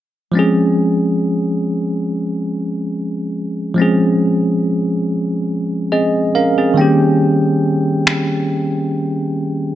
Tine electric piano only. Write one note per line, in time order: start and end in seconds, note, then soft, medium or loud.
0.32 3.72 F3 medium
0.32 3.73 G#3 medium
0.32 3.74 C4 medium
0.37 3.75 C#4 medium
0.37 3.76 G#4 medium
3.74 6.29 F3 medium
3.74 6.30 G#3 medium
3.74 5.88 C4 medium
3.80 5.89 C#4 medium
3.80 5.90 G#4 medium
5.92 6.33 C4 medium
5.92 6.33 G#4 medium
5.92 6.32 D#5 medium
6.35 6.57 C#4 medium
6.35 6.57 A#4 medium
6.35 6.75 F5 medium
6.58 6.99 C4 medium
6.58 6.99 G#4 medium
6.74 9.75 D#3 medium
6.74 9.75 G3 medium
6.74 9.75 A#3 medium
6.74 7.18 G5 medium
6.79 9.75 C#4 medium
6.79 9.75 G4 medium